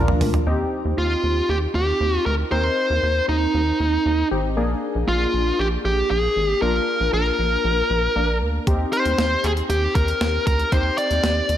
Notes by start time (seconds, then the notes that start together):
Already playing: A#1 F3 A#3 D4 F4 A#4
0.08 floor tom
0.21 D2, floor tom, open hi-hat
0.34 closed hi-hat, floor tom
0.47 D#2 C4 D#4 G4
0.85 D#2
0.98 D#2 F4
1.24 D#2
1.49 D#2 G4
1.75 D#2 G4
2.01 D#2
2.26 D2 A#4
2.52 D#2 C4 D#4 A#4 C5
2.90 D#2
3.03 D#2
3.29 D#2 D#4
3.54 D#2
3.80 D#2
4.06 D#2
4.31 G#1 C4 D#4 G4
4.57 A#1 A#3 D4 G#4
4.95 A#1
5.08 A#1 F4
5.34 A#1
5.59 A#1 G4
5.85 A#1 G4
6.11 A#1 G#4
6.36 G#1
6.50 G4
6.62 A#1 A#3 D4 F4 A#4
7.00 A#1
7.13 A#1 A#4
7.39 A#1
7.65 A#1
7.90 A#1
8.16 A#1 A#3 D4 A#4
8.41 D2
8.67 D#2 C4 D#4 G4, kick, closed hi-hat
8.93 C5, closed hi-hat
9.06 D#2, closed hi-hat
9.18 D#2, snare, closed hi-hat
9.44 D#2 G#4, closed hi-hat
9.57 closed hi-hat
9.70 D#2 G4, closed hi-hat
9.95 D#2 A#4, kick, closed hi-hat
10.08 closed hi-hat
10.21 D#2, snare, closed hi-hat
10.47 D2 A#4, kick, closed hi-hat
10.59 closed hi-hat
10.72 D#2 C4 D#4 G4 C5, kick, closed hi-hat
10.98 D5, closed hi-hat
11.11 D#2, closed hi-hat
11.24 D#2, snare, closed hi-hat
11.49 D#2, closed hi-hat